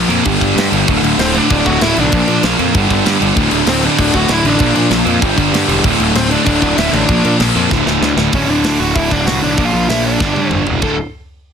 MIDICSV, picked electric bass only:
0, 0, Header, 1, 2, 480
1, 0, Start_track
1, 0, Tempo, 310720
1, 1369, Time_signature, 4, 2, 24, 8
1, 17813, End_track
2, 0, Start_track
2, 0, Title_t, "Picked electric bass"
2, 0, Program_c, 0, 34
2, 124, Note_on_c, 0, 41, 92
2, 288, Note_off_c, 0, 41, 0
2, 400, Note_on_c, 0, 31, 103
2, 553, Note_off_c, 0, 31, 0
2, 633, Note_on_c, 0, 31, 101
2, 788, Note_off_c, 0, 31, 0
2, 861, Note_on_c, 0, 43, 90
2, 1020, Note_off_c, 0, 43, 0
2, 1112, Note_on_c, 0, 31, 96
2, 1268, Note_off_c, 0, 31, 0
2, 1363, Note_on_c, 0, 26, 99
2, 1515, Note_off_c, 0, 26, 0
2, 1580, Note_on_c, 0, 26, 96
2, 1739, Note_off_c, 0, 26, 0
2, 1826, Note_on_c, 0, 26, 94
2, 2134, Note_off_c, 0, 26, 0
2, 2324, Note_on_c, 0, 26, 106
2, 2476, Note_off_c, 0, 26, 0
2, 2566, Note_on_c, 0, 26, 101
2, 2717, Note_off_c, 0, 26, 0
2, 2804, Note_on_c, 0, 26, 99
2, 2956, Note_off_c, 0, 26, 0
2, 3052, Note_on_c, 0, 35, 90
2, 3201, Note_off_c, 0, 35, 0
2, 3278, Note_on_c, 0, 34, 93
2, 3431, Note_off_c, 0, 34, 0
2, 3515, Note_on_c, 0, 46, 102
2, 3669, Note_off_c, 0, 46, 0
2, 3761, Note_on_c, 0, 34, 93
2, 3913, Note_off_c, 0, 34, 0
2, 4006, Note_on_c, 0, 41, 92
2, 4157, Note_off_c, 0, 41, 0
2, 4243, Note_on_c, 0, 31, 97
2, 4395, Note_off_c, 0, 31, 0
2, 4478, Note_on_c, 0, 31, 100
2, 4631, Note_off_c, 0, 31, 0
2, 4722, Note_on_c, 0, 43, 95
2, 4874, Note_off_c, 0, 43, 0
2, 4958, Note_on_c, 0, 31, 88
2, 5111, Note_off_c, 0, 31, 0
2, 5193, Note_on_c, 0, 26, 87
2, 5348, Note_off_c, 0, 26, 0
2, 5438, Note_on_c, 0, 26, 91
2, 5591, Note_off_c, 0, 26, 0
2, 5666, Note_on_c, 0, 26, 101
2, 5972, Note_off_c, 0, 26, 0
2, 6160, Note_on_c, 0, 26, 91
2, 6312, Note_off_c, 0, 26, 0
2, 6394, Note_on_c, 0, 26, 97
2, 6547, Note_off_c, 0, 26, 0
2, 6630, Note_on_c, 0, 26, 89
2, 6784, Note_off_c, 0, 26, 0
2, 6867, Note_on_c, 0, 33, 95
2, 7022, Note_off_c, 0, 33, 0
2, 7104, Note_on_c, 0, 34, 94
2, 7260, Note_off_c, 0, 34, 0
2, 7335, Note_on_c, 0, 46, 98
2, 7493, Note_off_c, 0, 46, 0
2, 7574, Note_on_c, 0, 34, 97
2, 7732, Note_off_c, 0, 34, 0
2, 7818, Note_on_c, 0, 41, 93
2, 7975, Note_off_c, 0, 41, 0
2, 8069, Note_on_c, 0, 31, 101
2, 8223, Note_off_c, 0, 31, 0
2, 8304, Note_on_c, 0, 31, 104
2, 8459, Note_off_c, 0, 31, 0
2, 8526, Note_on_c, 0, 43, 95
2, 8686, Note_off_c, 0, 43, 0
2, 8776, Note_on_c, 0, 28, 91
2, 8933, Note_off_c, 0, 28, 0
2, 9023, Note_on_c, 0, 26, 94
2, 9177, Note_off_c, 0, 26, 0
2, 9263, Note_on_c, 0, 26, 94
2, 9417, Note_off_c, 0, 26, 0
2, 9496, Note_on_c, 0, 26, 99
2, 9802, Note_off_c, 0, 26, 0
2, 9985, Note_on_c, 0, 26, 101
2, 10138, Note_off_c, 0, 26, 0
2, 10232, Note_on_c, 0, 26, 101
2, 10383, Note_off_c, 0, 26, 0
2, 10469, Note_on_c, 0, 26, 96
2, 10621, Note_off_c, 0, 26, 0
2, 10699, Note_on_c, 0, 33, 96
2, 10854, Note_off_c, 0, 33, 0
2, 10951, Note_on_c, 0, 34, 91
2, 11101, Note_off_c, 0, 34, 0
2, 11196, Note_on_c, 0, 46, 94
2, 11345, Note_off_c, 0, 46, 0
2, 11428, Note_on_c, 0, 34, 97
2, 11580, Note_off_c, 0, 34, 0
2, 11673, Note_on_c, 0, 41, 89
2, 11823, Note_off_c, 0, 41, 0
2, 11915, Note_on_c, 0, 26, 97
2, 12064, Note_off_c, 0, 26, 0
2, 12144, Note_on_c, 0, 26, 99
2, 12296, Note_off_c, 0, 26, 0
2, 12374, Note_on_c, 0, 38, 102
2, 12530, Note_off_c, 0, 38, 0
2, 12611, Note_on_c, 0, 26, 99
2, 12767, Note_off_c, 0, 26, 0
2, 12872, Note_on_c, 0, 26, 83
2, 13088, Note_off_c, 0, 26, 0
2, 13098, Note_on_c, 0, 26, 91
2, 13326, Note_off_c, 0, 26, 0
2, 13335, Note_on_c, 0, 38, 84
2, 13569, Note_off_c, 0, 38, 0
2, 13581, Note_on_c, 0, 26, 87
2, 13812, Note_off_c, 0, 26, 0
2, 13828, Note_on_c, 0, 26, 92
2, 14057, Note_off_c, 0, 26, 0
2, 14072, Note_on_c, 0, 26, 89
2, 14295, Note_off_c, 0, 26, 0
2, 14304, Note_on_c, 0, 36, 96
2, 14535, Note_off_c, 0, 36, 0
2, 14558, Note_on_c, 0, 35, 80
2, 14783, Note_off_c, 0, 35, 0
2, 14796, Note_on_c, 0, 34, 91
2, 15022, Note_off_c, 0, 34, 0
2, 15030, Note_on_c, 0, 34, 81
2, 15260, Note_off_c, 0, 34, 0
2, 15274, Note_on_c, 0, 34, 89
2, 15729, Note_off_c, 0, 34, 0
2, 15761, Note_on_c, 0, 31, 81
2, 15967, Note_off_c, 0, 31, 0
2, 15976, Note_on_c, 0, 43, 86
2, 16210, Note_off_c, 0, 43, 0
2, 16219, Note_on_c, 0, 31, 86
2, 16457, Note_off_c, 0, 31, 0
2, 16479, Note_on_c, 0, 28, 77
2, 16708, Note_off_c, 0, 28, 0
2, 16723, Note_on_c, 0, 26, 81
2, 16948, Note_off_c, 0, 26, 0
2, 17813, End_track
0, 0, End_of_file